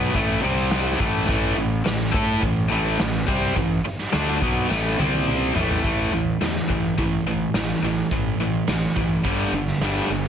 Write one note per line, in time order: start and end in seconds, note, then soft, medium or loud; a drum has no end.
0.00 0.13 B1 medium
0.00 0.13 B2 medium
0.00 0.14 F#3 loud
0.00 0.15 B3 loud
0.13 0.41 A1 medium
0.13 0.41 A2 medium
0.13 0.42 E3 medium
0.13 0.43 A3 medium
0.13 kick medium
0.13 open hi-hat medium
0.42 0.97 C2 medium
0.42 0.98 C3 medium
0.42 0.99 G3 loud
0.42 0.99 C4 loud
0.42 open hi-hat medium
0.71 snare medium
0.71 open hi-hat medium
0.98 1.27 A1 medium
0.98 1.25 A2 medium
0.98 1.26 E3 medium
0.98 1.27 A3 medium
0.98 kick medium
0.98 open hi-hat medium
1.27 1.55 A1 medium
1.27 1.54 A2 medium
1.27 1.54 E3 medium
1.27 1.56 A3 medium
1.27 kick loud
1.27 open hi-hat medium
1.55 1.84 A1 medium
1.55 1.79 A2 medium
1.55 1.79 E3 medium
1.55 open hi-hat medium
1.84 2.12 A1 medium
1.84 2.08 A2 medium
1.84 2.08 E3 medium
1.84 snare medium
1.84 open hi-hat medium
2.11 2.41 A2 medium
2.11 2.40 A3 medium
2.11 2.41 E4 medium
2.11 2.41 A4 medium
2.11 kick loud
2.11 open hi-hat medium
2.40 2.69 A1 medium
2.40 2.64 A2 medium
2.40 2.65 E3 medium
2.40 kick medium
2.40 open hi-hat medium
2.44 2.66 A2 medium
2.68 2.98 A1 medium
2.68 2.97 A2 medium
2.68 2.98 E3 medium
2.68 2.98 A3 loud
2.68 open hi-hat soft
2.99 3.26 A1 medium
2.99 3.22 A2 medium
2.99 3.22 E3 medium
2.99 snare loud
2.99 open hi-hat medium
3.27 3.54 C2 medium
3.27 3.55 C3 medium
3.27 3.55 G3 medium
3.27 3.56 C4 medium
3.27 kick medium
3.27 open hi-hat medium
3.56 3.83 A1 medium
3.56 3.79 A2 medium
3.56 3.79 E3 medium
3.56 kick medium
3.56 open hi-hat medium
3.85 muted distorted electric guitar stroke soft
3.85 muted fingered electric bass stroke soft
3.85 open hi-hat medium
3.99 snare soft
4.12 4.40 D2 medium
4.12 4.40 D3 medium
4.12 4.41 A3 loud
4.12 4.41 D4 medium
4.12 snare loud
4.12 open hi-hat medium
4.41 4.69 B1 medium
4.41 4.68 B2 medium
4.41 4.69 F#3 medium
4.41 4.69 B3 medium
4.41 kick medium
4.41 open hi-hat medium
4.69 4.97 A1 medium
4.69 4.97 A2 medium
4.69 4.98 E3 medium
4.69 4.98 A3 medium
4.69 snare medium
4.98 5.52 C2 medium
4.98 5.54 C3 medium
4.98 5.54 G3 medium
4.98 5.55 C4 medium
4.98 high tom medium
5.14 high tom medium
5.27 mid tom medium
5.54 5.83 A1 medium
5.54 5.82 A2 medium
5.54 5.83 E3 medium
5.54 5.83 A3 loud
5.54 floor tom medium
5.70 floor tom medium
5.83 6.02 A1 medium
5.83 6.11 A2 medium
5.83 6.11 E3 medium
5.83 6.11 A3 medium
5.83 kick loud
5.83 open hi-hat soft
6.13 6.31 A1 medium
6.13 6.38 A2 medium
6.13 6.39 E3 medium
6.41 6.59 E2 medium
6.41 6.67 A2 medium
6.41 6.67 E3 medium
6.41 snare medium
6.41 open hi-hat soft
6.56 snare soft
6.68 6.88 A1 medium
6.68 6.95 A2 medium
6.68 6.95 E3 medium
6.68 kick medium
6.98 7.17 A1 medium
6.98 7.23 A2 medium
6.98 7.24 E3 medium
6.98 kick medium
6.98 open hi-hat soft
7.26 7.44 A1 medium
7.26 7.52 A2 medium
7.26 7.52 E3 medium
7.54 7.73 A1 medium
7.54 7.80 A2 medium
7.54 7.81 E3 medium
7.54 snare medium
7.54 open hi-hat soft
7.82 8.01 A1 medium
7.82 8.08 A2 medium
7.82 8.09 E3 medium
8.11 8.30 A1 medium
8.11 8.37 A2 medium
8.11 8.37 E3 medium
8.11 kick loud
8.11 open hi-hat soft
8.39 8.58 A1 medium
8.39 8.66 A2 medium
8.39 8.66 E3 medium
8.68 8.86 A1 medium
8.68 8.94 A2 medium
8.68 8.95 E3 medium
8.68 snare medium
8.68 open hi-hat soft
8.97 9.15 A1 medium
8.97 9.22 A2 medium
8.97 9.23 E3 medium
8.97 kick medium
9.24 9.43 G1 medium
9.24 9.52 G2 medium
9.24 9.52 D3 medium
9.24 9.52 G3 medium
9.24 kick medium
9.24 open hi-hat soft
9.52 9.71 G1 medium
9.52 9.79 G2 medium
9.52 9.80 D3 medium
9.67 snare soft
9.81 9.99 G1 medium
9.81 10.09 G2 medium
9.81 10.09 D3 medium
9.81 10.10 G3 medium
9.81 snare medium
9.81 open hi-hat soft
10.10 10.28 G1 medium
10.10 10.28 G2 medium
10.10 10.28 D3 medium